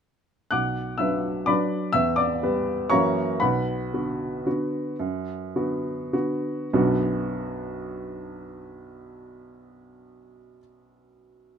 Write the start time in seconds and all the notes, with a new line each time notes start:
0.51 B1 F#5 D6 F#6
0.98 F#3 D4 B4 E5 E6
1.46 F#3 D4 B4 D5 B5 D6
1.93 E2 E5 E6
2.16 D5 D6
2.43 G3 B3 B4
2.90 F#2 E3 A#3 F#4 C#5 A#5 C#6
3.40 B1 B4 F#5 B5
3.93 D3 B3 F#4
4.46 D3 B3 F#4
5.00 F#2
5.55 D3 B3 F#4
6.13 D3 B3 F#4
6.73 B1 F#2 F#3 B3 D4 F#4